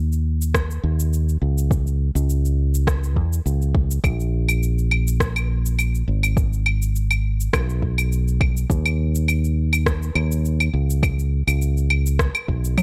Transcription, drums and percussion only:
0.12 cabasa soft
0.42 cabasa medium
0.54 kick loud
0.54 cross-stick medium
0.54 cabasa medium
0.71 cabasa soft
1.00 cabasa medium
1.13 cabasa medium
1.29 cabasa soft
1.58 cabasa medium
1.71 kick loud
1.71 cabasa medium
1.87 cabasa soft
2.16 cabasa medium
2.30 cabasa medium
2.45 cabasa soft
2.75 cabasa medium
2.87 kick loud
2.87 cross-stick medium
2.87 cabasa medium
3.04 cabasa soft
3.16 kick medium
3.33 cabasa medium
3.47 cabasa soft
3.62 cabasa soft
3.75 kick loud
3.91 cabasa medium
4.04 kick loud
4.04 cabasa soft
4.04 claves medium
4.20 cabasa soft
4.49 cabasa medium
4.49 claves medium
4.63 cabasa soft
4.78 cabasa soft
4.91 claves medium
5.08 cabasa medium
5.20 kick loud
5.20 cross-stick medium
5.20 cabasa medium
5.36 cabasa soft
5.36 claves medium
5.66 cabasa medium
5.79 cabasa medium
5.79 claves medium
5.95 cabasa soft
6.23 cabasa medium
6.23 claves medium
6.37 kick medium
6.37 cabasa soft
6.53 cabasa soft
6.66 claves medium
6.82 cabasa medium
6.96 cabasa soft
7.11 cabasa soft
7.11 claves medium
7.41 cabasa medium
7.53 kick loud
7.53 cross-stick medium
7.53 cabasa soft
7.53 claves medium
7.70 cabasa soft
7.82 kick medium
7.98 cabasa medium
7.98 claves medium
8.12 cabasa soft
8.28 cabasa soft
8.41 kick medium
8.41 claves medium
8.57 cabasa medium
8.70 kick medium
8.70 cabasa soft
8.86 cabasa soft
8.86 claves medium
9.15 cabasa medium
9.28 cabasa soft
9.28 claves medium
9.44 cabasa soft
9.73 cabasa medium
9.73 claves medium
9.86 kick loud
9.86 cross-stick medium
9.86 cabasa soft
10.03 cabasa soft
10.15 claves medium
10.32 cabasa medium
10.45 cabasa soft
10.60 cabasa soft
10.60 claves medium
10.90 cabasa medium
11.03 kick loud
11.03 cabasa soft
11.03 claves medium
11.19 cabasa soft
11.48 cabasa medium
11.48 claves medium
11.62 cabasa soft
11.77 cabasa soft
11.90 claves medium
12.06 cabasa medium
12.19 kick loud
12.19 cross-stick medium
12.19 cabasa soft
12.35 cabasa soft
12.35 claves medium
12.48 kick medium
12.65 cabasa medium
12.78 high tom medium
12.78 cabasa medium
12.78 claves medium

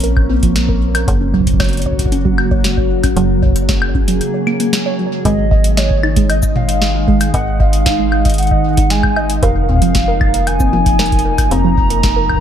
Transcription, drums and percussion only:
0.00 closed hi-hat soft
0.04 closed hi-hat soft
0.17 kick loud
0.17 high woodblock medium
0.43 kick loud
0.43 closed hi-hat medium
0.56 snare loud
0.56 closed hi-hat medium
0.69 kick loud
0.95 closed hi-hat medium
0.95 high woodblock medium
1.08 kick loud
1.08 closed hi-hat medium
1.34 kick medium
1.40 kick medium
1.47 kick medium
1.47 closed hi-hat medium
1.53 kick medium
1.60 kick loud
1.60 snare loud
1.60 closed hi-hat soft
1.60 high woodblock medium
1.64 closed hi-hat soft
1.69 closed hi-hat soft
1.73 closed hi-hat soft
1.77 closed hi-hat soft
1.82 closed hi-hat soft
1.86 kick soft
1.93 kick medium
1.99 kick medium
1.99 closed hi-hat medium
2.06 kick medium
2.12 closed hi-hat medium
2.25 kick loud
2.38 high woodblock medium
2.51 kick loud
2.64 snare loud
2.64 closed hi-hat medium
2.77 kick loud
3.03 kick loud
3.03 closed hi-hat medium
3.03 high woodblock medium
3.17 closed hi-hat medium
3.43 kick loud
3.46 kick medium
3.49 kick medium
3.52 kick medium
3.52 closed hi-hat medium
3.69 kick loud
3.69 snare loud
3.69 closed hi-hat medium
3.82 high woodblock medium
3.95 kick loud
4.08 closed hi-hat medium
4.21 closed hi-hat medium
4.47 high woodblock medium
4.60 closed hi-hat medium
4.73 snare loud
4.73 closed hi-hat medium
5.25 kick loud
5.25 closed hi-hat medium
5.51 kick loud
5.64 closed hi-hat medium
5.77 snare loud
5.77 closed hi-hat medium
5.90 kick loud
6.03 high woodblock medium
6.16 kick loud
6.16 closed hi-hat medium
6.30 closed hi-hat medium
6.30 high woodblock medium
6.43 kick loud
6.43 cabasa medium
6.56 mid tom medium
6.69 closed hi-hat medium
6.82 snare loud
7.08 kick loud
7.21 closed hi-hat medium
7.21 cabasa medium
7.21 high woodblock medium
7.34 kick loud
7.34 closed hi-hat medium
7.60 kick loud
7.73 closed hi-hat medium
7.86 kick loud
7.86 snare loud
7.86 closed hi-hat medium
8.12 high woodblock medium
8.25 kick loud
8.25 closed hi-hat medium
8.30 closed hi-hat medium
8.34 closed hi-hat soft
8.38 closed hi-hat medium
8.43 closed hi-hat soft
8.47 closed hi-hat soft
8.51 kick loud
8.77 kick loud
8.77 closed hi-hat medium
8.90 snare loud
8.90 closed hi-hat medium
9.03 kick loud
9.03 high woodblock medium
9.16 high woodblock medium
9.30 closed hi-hat medium
9.43 kick loud
9.43 closed hi-hat medium
9.69 kick medium
9.71 kick medium
9.74 kick medium
9.77 kick medium
9.79 kick loud
9.79 closed hi-hat medium
9.95 kick loud
9.95 snare loud
9.95 closed hi-hat medium
10.21 kick loud
10.21 high woodblock medium
10.34 closed hi-hat medium
10.47 closed hi-hat medium
10.47 high woodblock medium
10.60 kick loud
10.60 cabasa medium
10.73 mid tom medium
10.86 kick loud
10.86 closed hi-hat medium
10.99 snare loud
10.99 closed hi-hat soft
11.06 closed hi-hat soft
11.12 kick loud
11.12 closed hi-hat soft
11.19 closed hi-hat soft
11.38 kick loud
11.38 closed hi-hat medium
11.38 cabasa medium
11.38 high woodblock soft
11.51 closed hi-hat medium
11.77 kick loud
11.90 closed hi-hat medium
12.03 kick loud
12.03 snare loud
12.03 closed hi-hat medium
12.29 kick soft
12.29 high woodblock medium
12.34 kick medium

